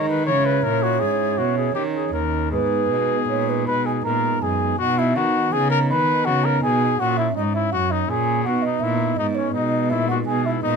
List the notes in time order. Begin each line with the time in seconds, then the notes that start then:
Already playing: D#3 G#3 D#4 D#5
0.09 B4
0.24 G#3 C#4 E4 C#5
0.28 C#3
0.46 B4
0.64 A#2 A#4
0.83 F#4
1.00 G#2 G#4
1.38 B2 F#4
1.58 G#4
1.72 D#3 C#4 D#4 G4
1.95 G#4
2.13 D#2 A#4
2.48 G#2 G#3 B3 D#4 G#4
2.52 G#2 B4
2.90 B2
3.29 A#2 C#5
3.49 B4
3.67 B2 B4 B5
3.86 G#4 G#5
4.04 A#2 A#4 A#5
4.42 F#2 G#4 G#5
4.78 B2 B3 D#4 F#4 F#5
4.98 E4 E5
5.16 D#3 F#4 F#5
5.52 C#3 G#4 G#5
5.71 A#4 A#5
5.89 D#3 B4 B5
6.25 C#3 F#4 F#5
6.44 A#4 A#5
6.62 B2 G#4 G#5
6.98 A#2 C#4 F#4 F#5
7.17 E4 E5
7.36 G#2 D#4 D#5
7.54 E4 E5
7.72 F#2 F#4 F#5
7.91 D#4 D#5
8.09 A#2 G#4 G#5
8.44 B2 B3 D#4 F#4 F#5
8.62 D#4 D#5
8.80 A#2 E4 E5
8.85 A#2
9.16 G#2 G#3 B3 D#4 D#5
9.20 G#2
9.35 C#4 C#5
9.53 B2 D#4 D#5
9.57 B2
9.90 A#2 E4 E5
10.08 F#4 F#5
10.26 B2 G#4 G#5
10.45 E4 E5
10.63 A#2 D#4 D#5